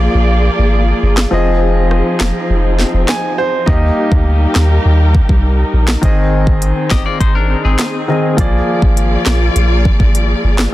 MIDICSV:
0, 0, Header, 1, 6, 480
1, 0, Start_track
1, 0, Tempo, 588235
1, 1080, Time_signature, 4, 2, 24, 8
1, 8763, End_track
2, 0, Start_track
2, 0, Title_t, "Clean electric guitar"
2, 0, Program_c, 0, 27
2, 5640, Note_on_c, 0, 75, 74
2, 5644, Note_on_c, 0, 67, 65
2, 5754, Note_off_c, 0, 75, 0
2, 5756, Note_off_c, 0, 67, 0
2, 5759, Note_on_c, 0, 74, 82
2, 5763, Note_on_c, 0, 65, 68
2, 5873, Note_off_c, 0, 74, 0
2, 5876, Note_off_c, 0, 65, 0
2, 5879, Note_on_c, 0, 72, 82
2, 5884, Note_on_c, 0, 63, 70
2, 5994, Note_off_c, 0, 72, 0
2, 5996, Note_off_c, 0, 63, 0
2, 5999, Note_on_c, 0, 70, 83
2, 6004, Note_on_c, 0, 62, 71
2, 6227, Note_off_c, 0, 70, 0
2, 6230, Note_off_c, 0, 62, 0
2, 6240, Note_on_c, 0, 68, 70
2, 6245, Note_on_c, 0, 60, 62
2, 6810, Note_off_c, 0, 68, 0
2, 6813, Note_off_c, 0, 60, 0
2, 8763, End_track
3, 0, Start_track
3, 0, Title_t, "Grand piano"
3, 0, Program_c, 1, 0
3, 0, Control_c, 1, 64, 127
3, 0, Note_on_c, 1, 53, 75
3, 0, Note_on_c, 1, 58, 68
3, 0, Note_on_c, 1, 68, 72
3, 0, Note_on_c, 1, 74, 81
3, 1042, Note_off_c, 1, 53, 0
3, 1046, Note_off_c, 1, 58, 0
3, 1050, Note_off_c, 1, 68, 0
3, 1055, Note_off_c, 1, 74, 0
3, 1067, Note_on_c, 1, 53, 77
3, 1076, Note_on_c, 1, 60, 67
3, 1085, Note_on_c, 1, 68, 73
3, 1090, Control_c, 1, 64, 0
3, 1093, Note_on_c, 1, 75, 84
3, 1224, Control_c, 1, 64, 127
3, 2519, Note_on_c, 1, 80, 72
3, 2743, Note_off_c, 1, 80, 0
3, 2760, Note_on_c, 1, 72, 73
3, 2961, Note_off_c, 1, 53, 0
3, 2965, Note_off_c, 1, 60, 0
3, 2970, Note_off_c, 1, 68, 0
3, 2974, Note_off_c, 1, 75, 0
3, 2983, Note_off_c, 1, 72, 0
3, 2987, Note_on_c, 1, 63, 78
3, 2995, Note_on_c, 1, 58, 69
3, 3003, Note_on_c, 1, 67, 71
3, 3009, Control_c, 1, 64, 0
3, 3012, Note_on_c, 1, 75, 85
3, 3128, Control_c, 1, 64, 127
3, 4881, Note_off_c, 1, 63, 0
3, 4885, Note_off_c, 1, 58, 0
3, 4889, Note_off_c, 1, 67, 0
3, 4893, Note_off_c, 1, 75, 0
3, 4908, Note_on_c, 1, 51, 78
3, 4917, Note_on_c, 1, 60, 69
3, 4926, Note_on_c, 1, 68, 70
3, 4933, Control_c, 1, 64, 0
3, 4933, Note_on_c, 1, 75, 85
3, 5059, Control_c, 1, 64, 127
3, 6562, Note_off_c, 1, 51, 0
3, 6566, Note_off_c, 1, 60, 0
3, 6570, Note_off_c, 1, 68, 0
3, 6574, Note_off_c, 1, 75, 0
3, 6594, Note_on_c, 1, 51, 57
3, 6598, Note_on_c, 1, 60, 51
3, 6603, Note_on_c, 1, 68, 53
3, 6607, Note_on_c, 1, 75, 59
3, 6828, Note_on_c, 1, 53, 76
3, 6834, Note_off_c, 1, 68, 0
3, 6837, Note_off_c, 1, 51, 0
3, 6837, Note_on_c, 1, 58, 70
3, 6839, Note_off_c, 1, 60, 0
3, 6844, Note_off_c, 1, 75, 0
3, 6846, Note_on_c, 1, 68, 68
3, 6850, Control_c, 1, 64, 0
3, 6853, Note_on_c, 1, 74, 84
3, 6974, Control_c, 1, 64, 127
3, 8722, Note_off_c, 1, 53, 0
3, 8726, Note_off_c, 1, 58, 0
3, 8730, Note_off_c, 1, 68, 0
3, 8734, Note_off_c, 1, 74, 0
3, 8763, End_track
4, 0, Start_track
4, 0, Title_t, "String section"
4, 0, Program_c, 2, 48
4, 0, Note_on_c, 2, 58, 77
4, 0, Note_on_c, 2, 65, 72
4, 0, Note_on_c, 2, 68, 81
4, 0, Note_on_c, 2, 74, 84
4, 1061, Note_off_c, 2, 58, 0
4, 1062, Note_off_c, 2, 65, 0
4, 1062, Note_off_c, 2, 74, 0
4, 1082, Note_on_c, 2, 53, 80
4, 1082, Note_on_c, 2, 60, 72
4, 1082, Note_on_c, 2, 63, 70
4, 2968, Note_off_c, 2, 68, 0
4, 2982, Note_off_c, 2, 53, 0
4, 2982, Note_off_c, 2, 60, 0
4, 3000, Note_on_c, 2, 55, 79
4, 3000, Note_on_c, 2, 67, 71
4, 3001, Note_on_c, 2, 70, 82
4, 4901, Note_off_c, 2, 55, 0
4, 4901, Note_off_c, 2, 67, 0
4, 4901, Note_off_c, 2, 70, 0
4, 4920, Note_on_c, 2, 68, 81
4, 4921, Note_on_c, 2, 60, 76
4, 6808, Note_off_c, 2, 63, 0
4, 6821, Note_off_c, 2, 60, 0
4, 6840, Note_on_c, 2, 58, 76
4, 6840, Note_on_c, 2, 65, 68
4, 6840, Note_on_c, 2, 74, 87
4, 8741, Note_off_c, 2, 58, 0
4, 8741, Note_off_c, 2, 65, 0
4, 8741, Note_off_c, 2, 74, 0
4, 8763, Note_off_c, 2, 68, 0
4, 8763, End_track
5, 0, Start_track
5, 0, Title_t, "Sub bass"
5, 0, Program_c, 3, 38
5, 120, Note_on_c, 3, 34, 104
5, 402, Note_off_c, 3, 34, 0
5, 480, Note_on_c, 3, 32, 89
5, 762, Note_off_c, 3, 32, 0
5, 840, Note_on_c, 3, 31, 99
5, 1028, Note_off_c, 3, 31, 0
5, 1080, Note_on_c, 3, 29, 106
5, 1650, Note_off_c, 3, 29, 0
5, 1800, Note_on_c, 3, 29, 96
5, 1894, Note_off_c, 3, 29, 0
5, 2040, Note_on_c, 3, 29, 97
5, 2322, Note_off_c, 3, 29, 0
5, 2399, Note_on_c, 3, 29, 90
5, 2494, Note_off_c, 3, 29, 0
5, 2999, Note_on_c, 3, 39, 108
5, 3187, Note_off_c, 3, 39, 0
5, 3359, Note_on_c, 3, 38, 80
5, 3641, Note_off_c, 3, 38, 0
5, 3719, Note_on_c, 3, 39, 88
5, 3907, Note_off_c, 3, 39, 0
5, 3960, Note_on_c, 3, 39, 95
5, 4242, Note_off_c, 3, 39, 0
5, 4318, Note_on_c, 3, 36, 85
5, 4601, Note_off_c, 3, 36, 0
5, 4680, Note_on_c, 3, 34, 76
5, 4868, Note_off_c, 3, 34, 0
5, 4919, Note_on_c, 3, 32, 103
5, 5490, Note_off_c, 3, 32, 0
5, 5641, Note_on_c, 3, 31, 96
5, 5735, Note_off_c, 3, 31, 0
5, 5879, Note_on_c, 3, 32, 103
5, 6162, Note_off_c, 3, 32, 0
5, 6241, Note_on_c, 3, 32, 84
5, 6335, Note_off_c, 3, 32, 0
5, 6840, Note_on_c, 3, 34, 101
5, 7028, Note_off_c, 3, 34, 0
5, 7199, Note_on_c, 3, 32, 103
5, 7482, Note_off_c, 3, 32, 0
5, 7561, Note_on_c, 3, 34, 94
5, 7749, Note_off_c, 3, 34, 0
5, 7800, Note_on_c, 3, 34, 105
5, 8082, Note_off_c, 3, 34, 0
5, 8159, Note_on_c, 3, 32, 92
5, 8441, Note_off_c, 3, 32, 0
5, 8521, Note_on_c, 3, 31, 100
5, 8709, Note_off_c, 3, 31, 0
5, 8763, End_track
6, 0, Start_track
6, 0, Title_t, "Drums"
6, 960, Note_on_c, 9, 38, 114
6, 960, Note_on_c, 9, 39, 89
6, 1041, Note_off_c, 9, 39, 0
6, 1042, Note_off_c, 9, 38, 0
6, 1559, Note_on_c, 9, 37, 68
6, 1641, Note_off_c, 9, 37, 0
6, 1799, Note_on_c, 9, 39, 75
6, 1800, Note_on_c, 9, 38, 94
6, 1881, Note_off_c, 9, 39, 0
6, 1882, Note_off_c, 9, 38, 0
6, 2280, Note_on_c, 9, 38, 65
6, 2362, Note_off_c, 9, 38, 0
6, 2519, Note_on_c, 9, 39, 81
6, 2520, Note_on_c, 9, 37, 85
6, 2520, Note_on_c, 9, 38, 103
6, 2601, Note_off_c, 9, 39, 0
6, 2602, Note_off_c, 9, 37, 0
6, 2602, Note_off_c, 9, 38, 0
6, 2999, Note_on_c, 9, 36, 112
6, 3081, Note_off_c, 9, 36, 0
6, 3359, Note_on_c, 9, 36, 84
6, 3440, Note_off_c, 9, 36, 0
6, 3718, Note_on_c, 9, 39, 76
6, 3719, Note_on_c, 9, 38, 94
6, 3799, Note_off_c, 9, 39, 0
6, 3800, Note_off_c, 9, 38, 0
6, 4199, Note_on_c, 9, 36, 87
6, 4281, Note_off_c, 9, 36, 0
6, 4319, Note_on_c, 9, 36, 75
6, 4400, Note_off_c, 9, 36, 0
6, 4800, Note_on_c, 9, 39, 86
6, 4801, Note_on_c, 9, 38, 113
6, 4882, Note_off_c, 9, 38, 0
6, 4882, Note_off_c, 9, 39, 0
6, 4919, Note_on_c, 9, 36, 115
6, 4920, Note_on_c, 9, 42, 72
6, 5001, Note_off_c, 9, 36, 0
6, 5001, Note_off_c, 9, 42, 0
6, 5279, Note_on_c, 9, 36, 83
6, 5361, Note_off_c, 9, 36, 0
6, 5401, Note_on_c, 9, 42, 69
6, 5482, Note_off_c, 9, 42, 0
6, 5639, Note_on_c, 9, 39, 76
6, 5640, Note_on_c, 9, 38, 96
6, 5641, Note_on_c, 9, 36, 94
6, 5721, Note_off_c, 9, 38, 0
6, 5721, Note_off_c, 9, 39, 0
6, 5722, Note_off_c, 9, 36, 0
6, 5879, Note_on_c, 9, 36, 96
6, 5880, Note_on_c, 9, 42, 70
6, 5961, Note_off_c, 9, 36, 0
6, 5962, Note_off_c, 9, 42, 0
6, 6359, Note_on_c, 9, 39, 86
6, 6360, Note_on_c, 9, 38, 111
6, 6360, Note_on_c, 9, 42, 73
6, 6440, Note_off_c, 9, 39, 0
6, 6441, Note_off_c, 9, 38, 0
6, 6441, Note_off_c, 9, 42, 0
6, 6839, Note_on_c, 9, 36, 111
6, 6839, Note_on_c, 9, 42, 69
6, 6921, Note_off_c, 9, 36, 0
6, 6921, Note_off_c, 9, 42, 0
6, 7199, Note_on_c, 9, 36, 84
6, 7281, Note_off_c, 9, 36, 0
6, 7320, Note_on_c, 9, 42, 69
6, 7402, Note_off_c, 9, 42, 0
6, 7559, Note_on_c, 9, 39, 74
6, 7560, Note_on_c, 9, 38, 93
6, 7640, Note_off_c, 9, 39, 0
6, 7641, Note_off_c, 9, 38, 0
6, 7800, Note_on_c, 9, 42, 69
6, 7881, Note_off_c, 9, 42, 0
6, 8040, Note_on_c, 9, 36, 85
6, 8121, Note_off_c, 9, 36, 0
6, 8159, Note_on_c, 9, 36, 77
6, 8241, Note_off_c, 9, 36, 0
6, 8281, Note_on_c, 9, 42, 72
6, 8362, Note_off_c, 9, 42, 0
6, 8640, Note_on_c, 9, 39, 91
6, 8641, Note_on_c, 9, 38, 114
6, 8722, Note_off_c, 9, 39, 0
6, 8723, Note_off_c, 9, 38, 0
6, 8763, End_track
0, 0, End_of_file